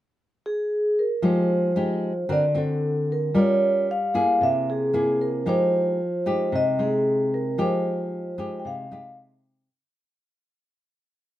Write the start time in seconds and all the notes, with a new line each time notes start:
0.46 G#4
0.99 A#4
1.22 F3 G#3 D#4 G4 C5
1.76 G#3 D#4 G4
2.29 D3 C4 F#4 A#4 D5
2.55 C4 F#4 A4
3.12 A#4
3.34 G3 C#4 F4 A#4 C#5
3.91 F5
4.14 A#3 E4 G#4
4.41 C3 E5
4.70 G#4
4.93 A#3 E4 G#4
5.22 A#4
5.46 F3 G#3 D#4 G4 C5
6.26 G#3 D#4 G4
6.52 C3 D#5
6.79 G#3 D#4 G#4
7.34 A#4
7.58 F3 G#3 D#4 G4 C5
8.38 G#3 D#4 G4
8.60 G5
8.65 C3 F5
8.91 G#3 D#4 G4